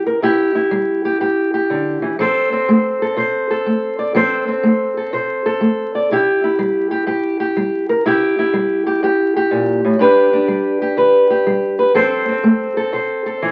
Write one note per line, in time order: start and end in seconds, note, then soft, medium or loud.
0.00 0.20 G3 medium
0.00 0.22 E4 medium
0.07 0.21 A#4 medium
0.22 0.69 C3 medium
0.22 0.54 E4 medium
0.22 1.04 G4 medium
0.55 2.16 E4 medium
0.71 1.17 G3 medium
1.05 1.20 G4 medium
1.21 1.66 G2 medium
1.21 1.53 G4 medium
1.54 2.17 G4 medium
1.70 2.02 D3 medium
2.02 2.19 E3 medium
2.19 2.64 F3 medium
2.19 2.52 C4 medium
2.19 3.02 A4 medium
2.19 3.17 C5 medium
2.52 4.15 C4 medium
2.69 3.14 A3 medium
3.02 3.49 A4 medium
3.16 3.62 C3 medium
3.16 3.98 C5 medium
3.51 4.13 A4 medium
3.66 4.11 A3 medium
3.99 4.13 D5 medium
4.15 4.60 F3 medium
4.15 4.47 C4 medium
4.15 4.96 A4 medium
4.15 5.13 C5 medium
4.48 6.12 C4 soft
4.63 5.09 A3 medium
4.97 5.45 A4 soft
5.13 5.58 C3 medium
5.13 5.95 C5 medium
5.46 6.08 A4 medium
5.61 6.06 A3 medium
5.95 6.08 D5 medium
6.11 6.56 C3 medium
6.11 6.43 E4 medium
6.11 6.91 G4 medium
6.44 8.04 E4 soft
6.59 7.04 G3 medium
6.91 7.07 G4 medium
7.07 7.52 G2 medium
7.07 7.40 G4 medium
7.40 7.89 G4 medium
7.57 8.02 G3 medium
7.89 8.03 A#4 medium
8.06 8.50 C3 medium
8.06 8.38 E4 medium
8.06 8.86 G4 medium
8.39 9.99 E4 medium
8.54 8.99 G3 medium
8.87 9.03 G4 medium
9.03 9.48 G2 medium
9.03 9.35 G4 medium
9.36 9.99 G4 medium
9.51 9.83 A#2 medium
9.85 9.99 A2 medium
9.99 10.45 G2 medium
9.99 10.32 D4 medium
9.99 10.80 G4 medium
9.99 10.96 B4 medium
10.33 11.93 D4 medium
10.48 10.94 G3 medium
10.82 11.29 G4 medium
10.97 11.43 D3 medium
10.97 11.78 B4 medium
11.30 11.93 G4 soft
11.47 11.92 G3 medium
11.79 11.93 B4 medium
11.95 12.40 F3 medium
11.95 12.28 C4 medium
11.95 12.76 A4 medium
11.95 12.93 C5 medium
12.28 13.52 C4 soft
12.44 12.89 A3 medium
12.77 13.25 A4 medium
12.93 13.38 C3 medium
12.93 13.52 C5 medium
13.26 13.52 A4 medium
13.42 13.52 E3 medium